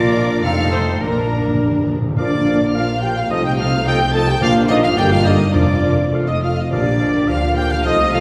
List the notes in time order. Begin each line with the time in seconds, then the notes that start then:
Already playing: A#1 A#2 F3 A#3 F4 A#4 D5 D6
0.17 D4
0.43 F1 F2 G3 A3 C4 D#4 A4 F5 F6
0.71 C5 C6
0.99 A#1 A#2 F3 A#3 D4 A#4 A#5
1.10 A#2
1.17 A#2
1.24 A#2
1.33 A#2
1.40 A#2
1.47 A#2
1.54 A#2
1.60 A#2 G3
1.71 A#2
1.78 A#2
1.86 A#2 F3
1.94 A#2
2.02 A#2
2.09 A#2
2.16 A#1 A#2 F3 A#3 D4 F4 A#4 D5 F5 D6
2.46 F3 A#4 F5
2.74 F3 A#3 F4 A#4 F5 F6
3.02 F3 G4 A#4 F5 G5 G6
3.15 F4 F5 F6
3.30 C2 C3 F3 A3 D#4 A4 D#5 D#6
3.44 G4 G5 G6
3.58 F3 F4 A4 D#5 F5 F6
3.86 F3 G4 A4 D#5 G5 G6
4.13 F3 A4 D#5 A5 A6
4.27 G4 G5 G6
4.39 A#1 A#2 F3 A#3 D4 F4 A#4 D5 F5 F6
4.68 F3 D#4 A#4 D5 D#5 D#6
4.82 F4 F5 F6
4.95 G1 G2 D3 A#3 D4 G4 A#4 D5 G5 G6
5.10 F4 F5 F6
5.24 D3 D#4 A#4 D5 D#5 D#6
5.52 F1 F2 F3 A#3 D4 F4 A#4 D5 D6
5.83 F3 A#4 D5
6.12 F3 A3 F4 A4 F5
6.26 D#4 D#5
6.30 D#6
6.41 F3 F4 F5 F6
6.45 A4
6.57 D#4 D#5 D#6
6.70 A#1 A#2 F3 A#3 D4 G4 A#4 D5 F5 D6
7.00 F3 A#4 F5
7.27 D2 D3 F3 F4 A#4 F5 F6
7.56 F3 G4 A#4 F5 G5 G6
7.70 F4 F5 F6
7.84 C2 C3 F3 A3 D#4 F4 A4 D#5 F5 D#6
8.12 F3 F4 A4 F5 F6